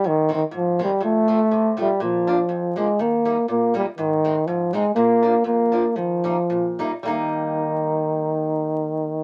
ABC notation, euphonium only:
X:1
M:2/4
L:1/8
Q:"Swing" 1/4=121
K:Eb
V:1 name="Euphonium" clef=bass
E, E, F, G, | =A,3 G, | F,3 A, | B,2 B, G, |
E,2 F, A, | B,2 B,2 | F,3 z | E,4- |
E,4 |]